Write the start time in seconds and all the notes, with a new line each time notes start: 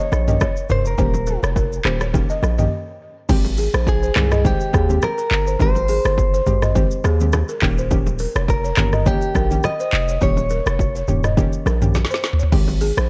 Already playing: D#3 A#3 C#4 G4 C#5
0.12 A#1, cross-stick, low bongo, shaker
0.28 D#3 A#3 C#4 G4 D#5, mid tom, shaker
0.41 C#5, kick, cross-stick, high bongo, low bongo, low conga, shaker
0.56 shaker
0.69 F1 A#4 C5, mid tom, shaker
0.85 A#4, shaker
0.98 D#1 D#3 A#3 C#4 G4 C5, kick, low conga, shaker
1.14 low bongo, shaker
1.27 A#4, low bongo, shaker
1.43 F1 C#5, cross-stick, shaker
1.56 A#4, kick, high bongo, shaker
1.73 shaker
1.85 D#1 D#3 A#3 C#4 G4 C5, cross-stick, clap, high bongo, shaker
2.01 C#5, cross-stick, high bongo, shaker
2.14 D#3 A#3 C#4 G4, kick, low conga, shaker
2.30 D#5, shaker
2.43 A#1, cross-stick, low bongo, shaker
2.58 D#3 A#3 C#4 G4 D#5, mid tom, shaker
3.29 G#1 D#3 G#3 C4 G4, kick, crash, low conga, shaker
3.45 low bongo, shaker
3.57 G#4, open hi-hat, low bongo, shaker
3.74 A#1 C5, cross-stick, shaker
3.87 G#4, kick, high bongo, shaker
4.03 C5, shaker
4.16 C2 D#3 G#3 C4 G4, cross-stick, clap, mid tom, shaker
4.32 D#5, cross-stick, mid tom, high bongo, shaker
4.44 D#3 G#3 C4 G4 C5, kick, low conga, shaker
4.61 shaker
4.73 D#2 G#4, kick, cross-stick, low bongo, shaker
4.89 D#3 G#3 C4 G4, shaker
5.02 A#4, cross-stick, high bongo, low bongo, low conga, shaker
5.18 A#4, shaker
5.31 G1, clap
5.47 C5, shaker
5.59 G#1 D#3 G#3 C4 G4 C5, kick, low conga, shaker
5.75 low bongo, shaker
5.88 G#4, open hi-hat, low bongo, shaker
6.05 G1 C5, cross-stick, shaker
6.18 kick, high bongo, shaker
6.34 C5, shaker
6.47 G#1 D#3 G#3 C4 G4, mid tom, shaker
6.62 D#5, cross-stick, mid tom, high bongo, shaker
6.75 D#3 G#3 C4 G4 C5, kick, low conga, shaker
6.91 shaker
7.04 D#2 G#4, cross-stick, low bongo, shaker
7.20 D#3 G#3 C4 G4, shaker
7.33 cross-stick, high bongo, low bongo, low conga, shaker
7.49 A#4, shaker
7.62 D#1 D#3 A#3 C#4 G4, kick, clap
7.78 C5, shaker
7.90 D#3 A#3 C#4 G4, kick, low conga, shaker
8.06 low bongo, shaker
8.19 A#4, open hi-hat, low bongo, shaker
8.35 F1 C#5, cross-stick, shaker
8.48 A#4, kick, high bongo, shaker
8.64 C#5, shaker
8.77 G1 D#3 A#3 C#4 G4, cross-stick, clap, mid tom, shaker
8.93 D#5, cross-stick, mid tom, high bongo, shaker
9.06 D#3 A#3 C#4 G4 C#5, kick, low conga, shaker
9.22 shaker
9.35 A#1 A#4, kick, cross-stick, low bongo, shaker
9.51 D#3 A#3 C#4 G4, shaker
9.63 D#5, cross-stick, high bongo, low bongo, low conga, shaker
9.80 C5, shaker
9.93 F1, clap
10.08 C#5, shaker
10.21 D#1 D#3 A#3 C#4 G4 C#5, kick, low conga, shaker
10.37 low bongo, shaker
10.50 A#4, low bongo, shaker
10.66 F1 C#5, cross-stick, shaker
10.79 kick, high bongo, shaker
10.95 C#5, shaker
11.08 D#1 D#3 A#3 C#4 G4, mid tom, shaker
11.24 D#5, cross-stick, mid tom, high bongo, shaker
11.37 D#3 A#3 C#4 G4 C#5, kick, low conga, shaker
11.53 shaker
11.66 A#1 A#4, cross-stick, low bongo, shaker
11.81 D#3 A#3 C#4 G4, mid tom, shaker
11.95 snare, high bongo, low bongo, low conga, shaker
12.05 snare
12.11 C5, snare, shaker
12.23 snare, shaker
12.33 floor tom
12.39 C#5, floor tom, shaker
12.52 G#1 D#3 G#3 C4 G4, kick, crash, low conga
12.68 low bongo, shaker
12.81 G#4, open hi-hat, low bongo, shaker
12.97 A#1 C5, cross-stick, shaker